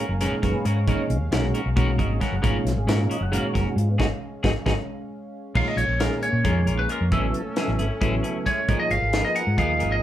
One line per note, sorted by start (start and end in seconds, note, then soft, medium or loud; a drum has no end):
0.00 5.52 G#3 medium
0.00 0.12 C#4 soft
0.00 5.52 C#4 medium
0.00 0.12 F#4 soft
0.00 0.12 A#4 medium
0.00 0.40 A#4 medium
0.00 5.52 F5 medium
0.09 0.27 F#1 medium
0.21 0.65 A#2 medium
0.21 0.65 D#3 medium
0.21 0.65 G#3 medium
0.21 0.34 B3 medium
0.21 0.34 C#4 medium
0.21 0.65 C#4 medium
0.21 0.34 F#4 medium
0.21 0.65 G#4 medium
0.21 0.34 A#4 medium
0.21 snare soft
0.21 closed hi-hat medium
0.42 0.52 F#1 loud
0.42 0.57 C#4 soft
0.42 0.57 F#4 soft
0.42 0.56 A#4 medium
0.42 0.65 B4 loud
0.42 kick medium
0.42 snare soft
0.42 closed hi-hat medium
0.65 0.89 G#2 medium
0.65 0.79 B3 medium
0.65 0.79 C#4 medium
0.65 0.79 F#4 medium
0.65 0.79 A#4 medium
0.65 1.07 C#5 medium
0.65 closed hi-hat medium
0.87 0.97 G#1 medium
0.87 1.17 A#2 medium
0.87 1.17 D#3 medium
0.87 1.17 G#3 medium
0.87 1.01 B3 medium
0.87 1.17 C#4 medium
0.87 1.01 C#4 medium
0.87 1.17 D#4 medium
0.87 1.01 F#4 medium
0.87 1.02 A#4 medium
0.87 kick loud
0.87 closed hi-hat medium
0.99 muted fingered electric bass stroke soft
1.10 1.20 B1 medium
1.10 closed hi-hat medium
1.20 1.30 D#2 loud
1.31 1.51 B1 loud
1.31 1.61 A#2 medium
1.31 1.61 D#3 medium
1.31 1.61 G#3 medium
1.31 1.45 B3 medium
1.31 1.61 C#4 medium
1.31 1.46 C#4 medium
1.31 1.61 F#4 loud
1.31 1.46 F#4 medium
1.31 1.46 A#4 medium
1.31 snare loud
1.31 closed hi-hat medium
1.54 1.68 C#4 soft
1.54 1.68 F#4 medium
1.54 1.68 A#4 medium
1.54 closed hi-hat medium
1.66 2.01 B1 medium
1.76 2.21 A#2 medium
1.76 2.21 D#3 medium
1.76 2.21 G#3 medium
1.76 1.90 B3 medium
1.76 1.90 C#4 medium
1.76 2.21 C#4 medium
1.76 1.90 F#4 loud
1.76 2.21 F#4 medium
1.76 1.90 A#4 loud
1.76 kick loud
1.76 closed hi-hat medium
1.98 2.17 G#1 loud
1.98 2.13 C#4 soft
1.98 2.12 F#4 medium
1.98 2.12 A#4 medium
1.98 2.20 D#5 medium
1.98 kick medium
1.98 closed hi-hat medium
2.20 2.34 B3 medium
2.20 2.35 C#4 medium
2.20 2.35 F#4 medium
2.20 2.35 A#4 medium
2.20 2.42 F#5 medium
2.20 kick medium
2.20 snare soft
2.20 closed hi-hat medium
2.32 2.41 F#1 loud
2.42 2.53 G#1 medium
2.42 2.72 A#2 medium
2.42 2.72 D#3 medium
2.42 2.72 G#3 medium
2.42 2.56 B3 medium
2.42 2.72 C#4 medium
2.42 2.56 C#4 medium
2.42 2.72 F4 loud
2.42 2.57 F#4 loud
2.42 2.57 A#4 loud
2.42 kick loud
2.42 closed hi-hat medium
2.65 2.74 B1 medium
2.65 snare soft
2.65 closed hi-hat medium
2.76 2.86 G#1 medium
2.76 2.89 G#4 medium
2.87 3.06 G#2 medium
2.87 3.17 A#2 medium
2.87 3.18 D#3 medium
2.87 3.17 G#3 medium
2.87 3.01 B3 medium
2.87 3.01 C#4 medium
2.87 3.17 C#4 medium
2.87 3.17 F4 medium
2.87 3.01 F#4 medium
2.87 3.00 F#4 medium
2.87 3.02 A#4 medium
2.87 snare loud
2.87 closed hi-hat medium
3.01 3.11 A#4 medium
3.09 3.24 C#4 soft
3.09 3.24 F#4 soft
3.09 3.23 A#4 soft
3.09 3.22 D#5 loud
3.09 muted fingered electric bass stroke soft
3.09 closed hi-hat medium
3.21 3.39 F#1 medium
3.21 3.33 F#5 loud
3.31 3.76 A#2 medium
3.31 3.76 D#3 medium
3.31 3.76 G#3 medium
3.31 3.46 B3 medium
3.31 3.76 C#4 medium
3.31 3.46 C#4 medium
3.31 3.67 F#4 medium
3.31 3.46 F#4 medium
3.31 3.46 A#4 medium
3.31 3.44 F5 medium
3.31 closed hi-hat medium
3.43 3.55 C#5 medium
3.43 muted fingered electric bass stroke soft
3.54 3.64 F#1 loud
3.54 3.68 C#4 soft
3.54 3.68 F#4 soft
3.54 3.68 A#4 medium
3.54 3.67 A#4 medium
3.54 kick medium
3.54 snare soft
3.54 closed hi-hat medium
3.68 3.78 F#4 medium
3.76 3.99 G#2 medium
3.76 3.89 F4 medium
3.76 closed hi-hat medium
3.90 3.97 B3 medium
3.98 4.08 G#1 medium
3.98 4.06 F#3 medium
3.98 4.06 G#3 medium
3.98 4.06 B3 medium
3.98 4.06 D#4 medium
3.98 4.07 D#4 loud
3.98 4.06 F#4 medium
3.98 4.07 F#4 medium
3.98 4.06 G#4 medium
3.98 4.07 G#4 loud
3.98 kick medium
3.98 snare medium
4.43 4.53 G#1 loud
4.43 4.51 F#3 loud
4.43 4.51 G#3 loud
4.43 4.51 B3 loud
4.43 4.51 D#4 medium
4.43 4.51 D#4 loud
4.43 4.51 F#4 medium
4.43 4.51 F#4 loud
4.43 4.51 G#4 medium
4.43 4.51 G#4 loud
4.43 kick medium
4.43 snare medium
4.65 4.75 G#1 loud
4.65 4.73 F#3 medium
4.65 4.73 G#3 loud
4.65 4.73 B3 medium
4.65 4.73 D#4 loud
4.65 4.74 D#4 loud
4.65 4.73 F#4 medium
4.65 4.74 F#4 loud
4.65 4.73 G#4 loud
4.65 4.73 G#4 medium
4.65 kick medium
4.65 snare medium
5.55 5.65 A#1 medium
5.55 5.85 A#2 medium
5.55 5.85 D#3 medium
5.55 5.69 G#3 medium
5.55 5.85 G#3 medium
5.55 7.10 A#3 medium
5.55 7.10 C#4 medium
5.55 5.69 C#4 medium
5.55 5.85 C#4 medium
5.55 5.69 F4 medium
5.55 5.85 F4 medium
5.55 5.69 A#4 medium
5.55 5.68 F5 medium
5.55 kick loud
5.55 crash medium
5.68 5.77 D#5 medium
5.77 5.86 A#1 medium
5.77 6.01 C#5 medium
5.77 closed hi-hat medium
5.88 6.06 A#1 medium
6.00 6.29 A#2 medium
6.00 6.29 D#3 medium
6.00 6.13 G#3 soft
6.00 6.30 G#3 medium
6.00 6.14 C#4 soft
6.00 6.30 C#4 medium
6.00 6.14 F4 soft
6.00 6.30 G#4 medium
6.00 6.23 A#4 medium
6.00 6.14 A#4 medium
6.00 snare loud
6.00 closed hi-hat medium
6.23 6.75 C#5 medium
6.23 closed hi-hat medium
6.33 6.42 A#2 medium
6.44 6.68 F2 medium
6.44 6.89 A#2 medium
6.44 6.89 D#3 medium
6.44 6.58 G#3 medium
6.44 6.89 G#3 soft
6.44 6.58 C#4 medium
6.44 6.89 C#4 medium
6.44 6.58 F4 medium
6.44 6.89 G#4 medium
6.44 6.58 A#4 medium
6.44 kick loud
6.44 closed hi-hat medium
6.66 6.85 A#1 medium
6.66 6.81 C#4 soft
6.66 6.81 F4 soft
6.66 6.80 A#4 medium
6.66 closed hi-hat medium
6.79 6.90 B4 medium
6.89 7.03 G#3 medium
6.89 7.03 C#4 medium
6.89 7.03 F4 medium
6.89 7.03 A#4 medium
6.89 7.12 A#4 medium
6.89 closed hi-hat medium
7.01 7.14 F2 medium
7.11 7.30 A1 medium
7.11 7.41 C#3 medium
7.11 7.42 F#3 medium
7.11 7.25 G#3 medium
7.11 8.66 A3 medium
7.11 7.41 B3 medium
7.11 8.66 C#4 medium
7.11 7.25 C#4 medium
7.11 7.41 E4 medium
7.11 7.26 E4 medium
7.11 7.26 G#4 medium
7.11 8.50 A4 medium
7.11 7.42 A4 medium
7.11 kick loud
7.11 closed hi-hat medium
7.34 closed hi-hat medium
7.56 7.86 C#3 medium
7.56 7.86 F#3 medium
7.56 7.70 G#3 soft
7.56 7.86 B3 medium
7.56 7.70 C#4 medium
7.56 7.86 E4 medium
7.56 7.70 E4 medium
7.56 7.71 G#4 medium
7.56 7.86 A4 medium
7.56 snare medium
7.56 closed hi-hat medium
7.68 7.77 A1 medium
7.79 7.88 G#1 medium
7.79 7.93 C#4 soft
7.79 7.93 E4 soft
7.79 7.92 G#4 medium
7.79 closed hi-hat medium
8.00 8.20 A1 medium
8.00 8.46 C#3 medium
8.00 8.46 F#3 medium
8.00 8.14 G#3 medium
8.00 8.46 B3 medium
8.00 8.14 C#4 medium
8.00 8.15 E4 medium
8.00 8.46 E4 medium
8.00 8.15 G#4 medium
8.00 8.46 A4 medium
8.00 kick loud
8.00 closed hi-hat medium
8.23 8.37 C#4 soft
8.23 8.37 E4 soft
8.23 8.37 G#4 soft
8.23 closed hi-hat medium
8.45 8.59 G#3 medium
8.45 8.59 C#4 medium
8.45 8.60 E4 medium
8.45 8.60 G#4 medium
8.45 8.78 C#5 medium
8.45 kick medium
8.45 snare soft
8.45 closed hi-hat medium
8.68 8.78 G#1 medium
8.68 8.82 F3 medium
8.68 8.98 F3 medium
8.68 8.98 A#3 medium
8.68 8.82 B3 medium
8.68 8.98 D#4 medium
8.68 8.82 D#4 medium
8.68 10.03 F4 medium
8.68 10.03 G#4 medium
8.68 8.98 G#4 medium
8.68 10.03 A#4 medium
8.68 8.82 A#4 medium
8.68 8.98 C#5 medium
8.68 kick loud
8.68 closed hi-hat medium
8.79 8.91 D#5 medium
8.79 muted fingered electric bass stroke soft
8.91 9.00 G#1 medium
8.91 9.22 F5 loud
8.91 closed hi-hat soft
9.02 9.20 G#1 medium
9.13 9.26 F3 medium
9.13 9.43 F3 medium
9.13 9.43 A#3 medium
9.13 9.27 B3 medium
9.13 9.27 D#4 medium
9.13 9.43 D#4 medium
9.13 9.43 G#4 medium
9.13 9.27 A#4 medium
9.13 9.43 B4 medium
9.13 snare loud
9.13 closed hi-hat medium
9.25 9.36 D#5 medium
9.35 9.49 B3 soft
9.35 9.49 D#4 soft
9.35 9.49 A#4 soft
9.35 9.58 F#5 medium
9.35 closed hi-hat medium
9.47 9.56 G#2 medium
9.58 9.83 D#2 medium
9.58 9.71 F3 medium
9.58 10.02 F3 medium
9.58 10.03 A#3 medium
9.58 9.71 B3 medium
9.58 9.71 D#4 medium
9.58 10.02 D#4 medium
9.58 10.03 G#4 medium
9.58 9.72 A#4 medium
9.58 10.03 D#5 medium
9.58 9.93 F5 loud
9.58 kick loud
9.58 closed hi-hat medium
9.79 9.99 G#1 medium
9.79 9.94 B3 soft
9.79 9.94 D#4 soft
9.79 9.93 A#4 medium
9.79 closed hi-hat medium
9.92 10.02 D#5 medium